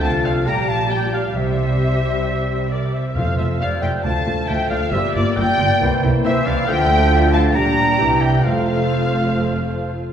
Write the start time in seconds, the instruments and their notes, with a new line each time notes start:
Already playing: bassoon F3, clarinet A4
0.02 double bass section C2, cello section C3, french horn section A3 F4, viola section A3 F4, flute F5, trumpet section A5, violin section A5, oboe A5
0.25 flute D5, violin section F5, trumpet section F5, oboe F5
0.46 double bass section A#1, cello section A#2, french horn section G3 G4, viola section G3 G4, bassoon G3, clarinet G4, flute G5, violin section A#5, trumpet section A#5, oboe A#5
0.68 flute F5, violin section A5, trumpet section A5, oboe A5
0.90 french horn section G3 G4, flute D5, violin section G5, trumpet section G5, oboe G5
1.12 flute D5, violin section F5, trumpet section F5, oboe F5
1.35 double bass section C2, timpani C3, cello section C3, french horn section G3 G4, viola section G3 G4, flute C5, oboe E5, trumpet section E5, violin section E5
2.71 flute A#4, violin section D5, trumpet section D5, oboe D5
2.93 flute C5, trumpet section E5, oboe E5, violin section E5
3.15 double bass section F1, timpani F2, cello section F2, bassoon F3, viola section A3 F4, french horn section A3 F4, clarinet A4, flute C5, oboe F5, trumpet section F5, violin section F5
3.37 double bass section F1, cello section F2, viola section A3 F4, flute C5, violin section E5, trumpet section E5, oboe E5
3.60 double bass section F1, cello section F2, bassoon G3, viola section A3 F4, clarinet C5, flute D5, trumpet section F5, violin section F5, oboe F5
3.82 double bass section F1, cello section F2, viola section A3 F4, flute E5, violin section G5, trumpet section G5, oboe G5
4.03 double bass section D2, cello section D2, bassoon F3, viola section A3 F4, clarinet A4, flute F5, violin section A5, trumpet section A5, oboe A5
4.26 cello section D2, double bass section D2, viola section A3 F4
4.47 cello section D2, double bass section D2, viola section A3 F4, flute E5, violin section G5, trumpet section G5, oboe G5
4.70 cello section D2, double bass section D2, viola section A3 F4, flute D5, violin section F5, trumpet section F5, oboe F5
4.91 double bass section G1, cello section G2, bassoon G3, french horn section A#3, viola section A#3 F4, clarinet G4, flute C5, violin section E5, trumpet section E5, oboe E5
5.14 double bass section G1, cello section G2, viola section A#3 F4, flute A#4, violin section D5, trumpet section D5, oboe D5
5.37 double bass section G1, cello section G2, viola section A#3 F4, clarinet A#4, flute D5, violin section G5, oboe G5, trumpet section G5
5.59 double bass section G1, cello section G2, viola section A#3 F4
5.81 double bass section C2, cello section C3, bassoon E3, viola section A#3 E4, french horn section E4, clarinet C5
6.03 double bass section C2, cello section C3, viola section A#3 E4
6.24 double bass section C2, cello section C3, bassoon E3, viola section A#3 E4, clarinet C5, flute C5, trumpet section E5, oboe E5, violin section E5
6.46 double bass section C2, cello section C3, viola section A#3 E4, flute D5, oboe F5, trumpet section F5, violin section F5
6.67 double bass section D2, cello section D3, bassoon F3, french horn section A3 F4, viola section A3 F4, clarinet A4, flute E5, violin section G5, trumpet section G5, oboe G5
7.33 flute F5, trumpet section A5, violin section A5, oboe A5
7.55 double bass section A#1, cello section A#2, bassoon G3, french horn section G3 D4, viola section G3 D4, clarinet G4, flute G5, violin section A#5, trumpet section A#5, oboe A#5
7.99 double bass section C2, cello section C3, bassoon E3, viola section G3 E4, french horn section E4, clarinet G4
8.21 flute E5, trumpet section G5, violin section G5, oboe G5
8.43 double bass section F1, cello section F2, bassoon F3, viola section A3 F4, french horn section A3 F4, clarinet A4, flute C5, violin section F5, trumpet section F5, oboe F5